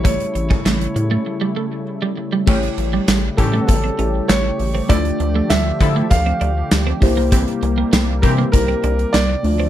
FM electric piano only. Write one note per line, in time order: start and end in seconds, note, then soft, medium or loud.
0.00 2.12 A3 medium
0.00 2.13 E4 medium
0.00 2.13 G4 medium
0.00 2.14 C#5 medium
2.46 3.95 A3 medium
2.46 3.96 E4 medium
2.46 3.96 G4 medium
2.46 3.96 C#5 medium
3.98 4.87 A3 medium
3.98 4.89 E4 soft
3.98 4.90 G4 soft
3.98 4.90 C#5 medium
4.88 6.97 A3 medium
4.88 6.98 D4 medium
4.88 6.98 F4 medium
4.88 6.98 D5 medium
7.01 8.50 A#3 medium
7.01 8.50 E4 medium
7.01 8.51 G4 medium
7.01 8.51 C5 medium
8.53 9.44 A#3 medium
8.53 9.44 E4 soft
8.53 9.44 G4 soft
8.53 9.44 C5 medium
9.43 9.69 A3 medium
9.43 9.69 D4 medium
9.43 9.69 F4 medium
9.43 9.69 D5 medium